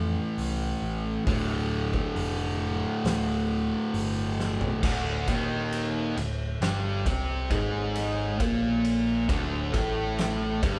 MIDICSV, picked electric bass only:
0, 0, Header, 1, 2, 480
1, 0, Start_track
1, 0, Key_signature, -1, "minor"
1, 0, Tempo, 890208
1, 686, Time_signature, 4, 2, 24, 8
1, 5818, End_track
2, 0, Start_track
2, 0, Title_t, "Picked electric bass"
2, 0, Program_c, 0, 34
2, 0, Note_on_c, 0, 41, 94
2, 77, Note_off_c, 0, 41, 0
2, 202, Note_on_c, 0, 36, 98
2, 379, Note_off_c, 0, 36, 0
2, 442, Note_on_c, 0, 33, 95
2, 619, Note_off_c, 0, 33, 0
2, 683, Note_on_c, 0, 26, 105
2, 1035, Note_off_c, 0, 26, 0
2, 1161, Note_on_c, 0, 29, 101
2, 1515, Note_off_c, 0, 29, 0
2, 1640, Note_on_c, 0, 26, 99
2, 1994, Note_off_c, 0, 26, 0
2, 2123, Note_on_c, 0, 31, 89
2, 2475, Note_off_c, 0, 31, 0
2, 2604, Note_on_c, 0, 26, 97
2, 2829, Note_off_c, 0, 26, 0
2, 2845, Note_on_c, 0, 27, 98
2, 3305, Note_off_c, 0, 27, 0
2, 3326, Note_on_c, 0, 26, 74
2, 3550, Note_off_c, 0, 26, 0
2, 3564, Note_on_c, 0, 31, 98
2, 3789, Note_off_c, 0, 31, 0
2, 3805, Note_on_c, 0, 36, 87
2, 4029, Note_off_c, 0, 36, 0
2, 4048, Note_on_c, 0, 32, 97
2, 4507, Note_off_c, 0, 32, 0
2, 4529, Note_on_c, 0, 34, 94
2, 4987, Note_off_c, 0, 34, 0
2, 5009, Note_on_c, 0, 26, 104
2, 5233, Note_off_c, 0, 26, 0
2, 5250, Note_on_c, 0, 33, 96
2, 5709, Note_off_c, 0, 33, 0
2, 5730, Note_on_c, 0, 31, 97
2, 5818, Note_off_c, 0, 31, 0
2, 5818, End_track
0, 0, End_of_file